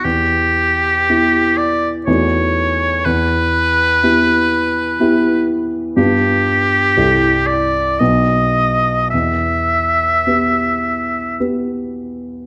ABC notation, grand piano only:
X:1
M:3/4
L:1/8
Q:1/4=60
K:Em
V:1 name="Grand piano"
E,,2 [B,EG]2 [E,,A,^DF]2 | E,,2 [B,EG]2 [B,EG]2 | [G,,B,=FG]2 [C,,G,EA]2 [B,,,B,^FB]2 | E,,2 [B,GB]2 [B,GB]2 |]